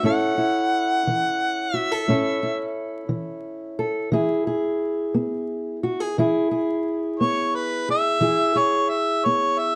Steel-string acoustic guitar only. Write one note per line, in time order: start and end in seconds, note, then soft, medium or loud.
0.03 0.65 A2 medium
0.03 2.07 C#4 medium
0.03 0.37 E4 medium
0.03 1.73 A4 medium
0.38 2.09 E4 medium
1.07 1.68 E3 medium
1.74 1.92 F#4 medium
1.92 2.09 A4 soft
2.08 2.69 A2 medium
2.08 4.09 C#4 medium
2.08 2.42 E4 medium
2.08 3.78 A4 medium
2.43 4.12 E4 medium
3.09 3.71 E3 medium
3.79 4.09 A4 medium
4.12 4.73 E3 medium
4.12 6.18 E4 medium
4.12 4.47 G#4 medium
4.47 5.83 G#4 medium
5.14 5.76 B3 medium
5.83 6.00 F#4 medium
6.00 6.17 G#4 soft
6.18 6.79 E3 medium
6.18 8.21 E4 medium
6.18 6.51 G#4 medium
6.51 7.88 G#4 medium
7.21 7.81 B3 medium
7.89 8.22 G#4 medium
8.21 8.82 E3 medium
8.21 9.75 E4 medium
8.21 8.55 G#4 medium
8.55 9.75 G#4 medium
9.26 9.75 B3 medium